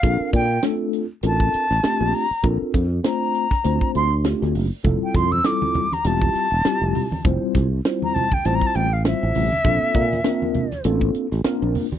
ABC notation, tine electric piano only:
X:1
M:4/4
L:1/8
Q:"Swing 16ths" 1/4=100
K:Bblyd
V:1 name="Tine electric piano"
[CDFAB] z [A,CDFA] z [CDFAB] z [A,CDFG] z | [CDFAB] z [A,CDFc] z [A,CDFc] z [A,CDFG] z | [G,CEFA] z [G,CEFA] z [G,CEFG] z [G,CEFG] z | [G,CEFc] z [G,CEFc] z [G,CEFc] z [G,CEFc] z |
[B,CDFA] z [B,CDFB] z [B,CDFA] z [B,CDFB] z |]